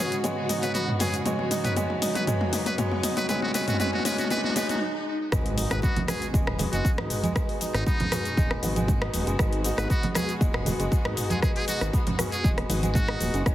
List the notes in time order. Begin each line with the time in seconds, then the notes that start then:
Already playing: G#2 C#3 G#3 B3 D#4 F#4, riser
0.00 B3 C#4 F#4 G#4 C#5
0.12 closed hi-hat, shaker
0.24 G#3 B3 F#4 C#5, closed hi-hat, mid tom, shaker
0.49 D#4, open hi-hat, mid tom, shaker
0.63 B3 F#4 B4 C#5, closed hi-hat, shaker
0.74 B3 F#4, closed hi-hat, mid tom, shaker
0.88 mid tom
1.00 B3 C#4 F#4 G#4 C#5, open hi-hat, mid tom, shaker
1.14 closed hi-hat, shaker
1.25 G#3 B3 F#4 C#5, closed hi-hat, mid tom, shaker
1.39 mid tom
1.51 D#4, open hi-hat, mid tom, shaker
1.64 B3 F#4 B4 C#5, closed hi-hat, mid tom, shaker
1.76 G#3 B3 F#4 C#5, closed hi-hat, mid tom, shaker
1.90 mid tom
2.02 D#4, open hi-hat, mid tom, shaker
2.15 B3 F#4 B4 C#5, closed hi-hat, mid tom, shaker
2.27 G#3 B3 F#4 C#5, closed hi-hat, mid tom, shaker
2.41 mid tom
2.52 D#4, open hi-hat, mid tom, shaker
2.66 B3 F#4 B4 C#5, closed hi-hat, mid tom, shaker
2.78 G#3 B3 F#4 C#5, closed hi-hat, mid tom, shaker
2.92 mid tom
3.03 D#4, open hi-hat, mid tom, shaker
3.17 B3 F#4 B4 C#5, closed hi-hat, mid tom, shaker
3.29 G#3 B3 F#4 B4 C#5, closed hi-hat, mid tom, shaker
3.36 mid tom
3.42 F#4, mid tom
3.48 mid tom
3.54 G#3 B3 F#4 B4 C#5, open hi-hat, mid tom, shaker
3.61 mid tom
3.68 F#4, closed hi-hat, mid tom, shaker
3.74 mid tom
3.80 G#3 B3 F#4 B4 C#5, closed hi-hat, mid tom, shaker
3.86 mid tom
3.93 F#4, mid tom
3.99 mid tom
4.05 G#3 B3 F#4 B4 C#5, open hi-hat, mid tom, shaker
4.12 mid tom
4.18 F#4, closed hi-hat, mid tom, shaker
4.24 mid tom
4.30 G#3 B3 F#4 B4 C#5, closed hi-hat, mid tom, shaker
4.37 mid tom
4.44 F#4, mid tom
4.50 mid tom
4.56 G#3 B3 F#4 B4 C#5, open hi-hat, mid tom, shaker
4.63 mid tom
4.69 F#4, closed hi-hat, mid tom, shaker
4.75 mid tom
5.32 G#1 B2 G#3 F#4 B4, kick, cross-stick, impact, muted conga, shaker
5.46 closed hi-hat
5.58 D#4, open hi-hat, muted conga, shaker
5.71 G#1 G#3 F#4 B4, cross-stick, closed hi-hat, shaker
5.82 B3 F#4, kick, muted conga, shaker
5.96 closed hi-hat, high conga, low conga
6.08 G#3 C#4 F#4 G#4 B4, cross-stick, open hi-hat, muted conga, high conga, shaker
6.22 closed hi-hat, shaker
6.34 D#1 G#3, kick, shaker
6.47 B3, cross-stick, mid tom, muted conga
6.59 G#3 F#4 B4, open hi-hat, high conga, low conga, shaker
6.73 F#1 G#3 F#4, closed hi-hat, muted conga, shaker
6.85 kick, shaker
6.98 G#1 G#3 D#4 F#4 B4, cross-stick, muted conga, high conga
7.10 mid tom, open hi-hat, shaker
7.23 G#3, closed hi-hat, high conga, shaker
7.36 G#3 F#4 B4, kick, cross-stick, muted conga, shaker
7.49 open hi-hat
7.61 D#4, open hi-hat, muted conga, shaker
7.74 G#1 G#3 D#4 F#4 B4, cross-stick, closed hi-hat, shaker
7.86 B3 D#4, kick, muted conga, shaker
8.00 closed hi-hat, mid tom, high conga, low conga
8.12 G#3 C#4 F#4 B4, cross-stick, mid tom, open hi-hat, muted conga, high conga, shaker
8.25 closed hi-hat, shaker
8.37 D#1 G#3, kick, high conga, shaker
8.51 B3, cross-stick, muted conga
8.63 G#1 G#3 F#4 B4, open hi-hat, high conga, shaker
8.76 G#3, closed hi-hat, muted conga, high conga, shaker
8.88 kick, low conga, shaker
9.01 G#3 D#4 F#4 B4, cross-stick, muted conga
9.14 D#1, open hi-hat, high conga, shaker
9.27 F#1 G#3, closed hi-hat, shaker
9.39 G#1 G#3 F#4, kick, cross-stick, muted conga, shaker
9.53 closed hi-hat
9.64 D#4, open hi-hat, muted conga, shaker
9.78 G#1 G#3 F#4 B4, cross-stick, closed hi-hat, shaker
9.90 B3 F#4, kick, muted conga, shaker
10.03 closed hi-hat, high conga, low conga
10.15 G#3 C#4 F#4 G#4 B4, cross-stick, open hi-hat, muted conga, high conga, shaker
10.29 closed hi-hat, shaker
10.41 D#1 G#3, kick, shaker
10.54 B3, cross-stick, mid tom, muted conga
10.66 G#3 F#4 B4, open hi-hat, high conga, low conga, shaker
10.79 F#1 G#3, closed hi-hat, muted conga, shaker
10.92 kick, shaker
11.05 G#1 G#3 D#4 F#4 B4, cross-stick, muted conga, high conga
11.17 mid tom, open hi-hat, shaker
11.30 G#3 G#4, closed hi-hat, high conga, shaker
11.42 G#3 F#4 G#4 B4, kick, cross-stick, muted conga, shaker
11.56 G#4, open hi-hat
11.68 D#4 F#4, open hi-hat, muted conga, shaker
11.81 G#1 G#3 F#4 B4, cross-stick, closed hi-hat, shaker
11.93 B3, kick, muted conga, shaker
12.07 closed hi-hat, mid tom, high conga, low conga
12.18 G#3 C#4 F#4 B4, cross-stick, mid tom, open hi-hat, muted conga, high conga, shaker
12.32 G#4, closed hi-hat, shaker
12.44 D#1 G#3, kick, high conga, shaker
12.58 B3, cross-stick, closed hi-hat, muted conga
12.69 G#1 G#3 F#4 B4, open hi-hat, high conga, shaker
12.83 G#3, closed hi-hat, muted conga, high conga, shaker
12.95 F#4, kick, low conga, shaker
13.08 G#3 D#4 F#4 B4, cross-stick, muted conga
13.20 D#1, open hi-hat, high conga, shaker
13.34 F#1 G#3, closed hi-hat, shaker
13.46 G#1 C#3 G#3 B3 F#4 C#5, kick, cross-stick, muted conga, shaker